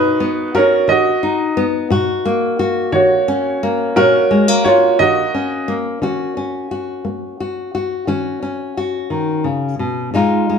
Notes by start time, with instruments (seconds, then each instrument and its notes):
Already playing: nylon-string guitar B2 D#4 F#4, upright piano D#4 B4
0.20 nylon-string guitar B3
0.55 upright piano C#4 A#4, nylon-string guitar F#4
0.88 nylon-string guitar D#3, upright piano F#4 D#5
1.23 nylon-string guitar D#4
1.57 nylon-string guitar B3
1.90 nylon-string guitar A#2 F#4
2.25 nylon-string guitar A#3
2.59 nylon-string guitar F#4
2.92 nylon-string guitar D#3, upright piano F#4 C#5
3.28 nylon-string guitar C#4
3.63 nylon-string guitar A#3
3.96 nylon-string guitar A#2 F#4, upright piano C#4 A#4
4.31 nylon-string guitar G#3
4.48 nylon-string guitar A#3
4.64 upright piano F4 C#5, nylon-string guitar F#4
4.99 nylon-string guitar D#3, upright piano F#4 D#5
5.34 nylon-string guitar C#4
5.68 nylon-string guitar A#3
6.02 nylon-string guitar D#3 C#4 F#4
6.37 nylon-string guitar C#4
6.71 nylon-string guitar F#4
7.05 nylon-string guitar A#3
7.40 nylon-string guitar F#4
7.75 nylon-string guitar F#4
8.07 nylon-string guitar D#3 C#4 F#4
8.42 nylon-string guitar C#4
8.77 nylon-string guitar F#4
9.10 nylon-string guitar D#3
9.44 nylon-string guitar C#3
9.79 nylon-string guitar B2
10.14 nylon-string guitar A#2 G#3 D#4 F4
10.50 nylon-string guitar G#3